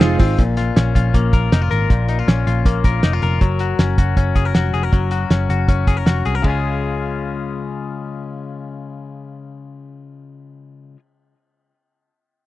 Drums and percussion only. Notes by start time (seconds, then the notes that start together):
0.01 snare, ride
0.19 kick, open hi-hat, ride
0.38 kick, closed hi-hat
0.57 snare, closed hi-hat
0.77 snare, closed hi-hat
0.95 kick, closed hi-hat
1.14 kick, closed hi-hat
1.33 kick, closed hi-hat
1.52 snare, closed hi-hat
1.71 closed hi-hat
1.90 kick, closed hi-hat
2.09 closed hi-hat
2.28 snare, closed hi-hat
2.47 closed hi-hat
2.65 kick, closed hi-hat
2.84 kick, closed hi-hat
3.03 snare, closed hi-hat
3.22 closed hi-hat
3.41 kick, closed hi-hat
3.59 closed hi-hat
3.79 snare, closed hi-hat
3.98 kick, closed hi-hat
4.17 kick, closed hi-hat
4.36 kick, closed hi-hat
4.55 snare, closed hi-hat
4.74 closed hi-hat
4.92 kick, closed hi-hat
5.11 closed hi-hat
5.30 snare, closed hi-hat
5.50 closed hi-hat
5.68 kick, closed hi-hat
5.87 kick, closed hi-hat
6.06 snare, closed hi-hat
6.25 closed hi-hat
6.44 kick, ride